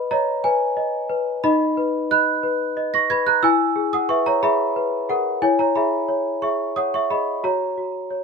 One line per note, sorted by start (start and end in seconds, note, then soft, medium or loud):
0.00 0.45 B4 loud
0.00 0.11 D#5 medium
0.00 0.11 B5 loud
0.11 0.42 C#5 medium
0.11 0.64 D#5 medium
0.11 0.44 A#5 loud
0.44 1.07 B4 medium
0.44 1.10 G#5 loud
0.77 1.30 D#5 medium
1.09 1.43 B4 medium
1.44 3.39 D#4 loud
1.44 2.07 D#5 loud
1.44 2.11 B5 loud
1.77 2.31 B4 medium
2.11 2.64 D#5 medium
2.11 2.90 B5 loud
2.11 2.94 F#6 loud
2.43 2.96 B4 medium
2.77 3.30 D#5 medium
2.94 3.09 C#6 medium
2.94 3.10 A#6 loud
3.10 3.43 B4 medium
3.10 3.26 B5 loud
3.10 3.27 G#6 loud
3.27 3.43 A#5 medium
3.27 3.43 F#6 loud
3.43 5.39 E4 loud
3.43 3.90 G#5 loud
3.43 3.93 E6 loud
3.76 4.29 G#4 medium
3.93 4.09 F#5 medium
3.93 4.10 D#6 loud
4.09 4.62 B4 medium
4.09 4.25 E5 medium
4.09 4.26 C#6 loud
4.26 4.42 C#5 medium
4.26 4.43 A#5 loud
4.43 4.96 G#4 medium
4.43 5.06 E5 medium
4.43 5.09 B5 loud
4.76 5.29 B4 medium
5.09 5.42 G#4 medium
5.09 5.41 A#4 medium
5.09 5.43 F#5 loud
5.42 7.39 E4 medium
5.42 5.58 C#5 medium
5.42 5.59 G#5 loud
5.59 5.75 C#5 medium
5.59 5.76 A#5 loud
5.75 6.29 G#4 medium
5.75 6.39 E5 medium
5.75 6.43 B5 loud
6.08 6.63 C#5 medium
6.42 6.96 G#4 medium
6.42 6.74 E5 medium
6.42 6.76 C#6 loud
6.76 7.30 C#5 medium
6.76 6.93 F#5 medium
6.76 6.93 D#6 loud
6.94 7.10 E5 medium
6.94 7.11 C#6 loud
7.10 7.44 G#4 medium
7.10 7.42 D#5 medium
7.10 7.44 B5 loud
7.44 7.76 F#4 medium
7.44 8.09 C#5 medium
7.44 8.24 A#5 loud
7.78 8.24 F#4 medium
8.11 8.24 C#5 medium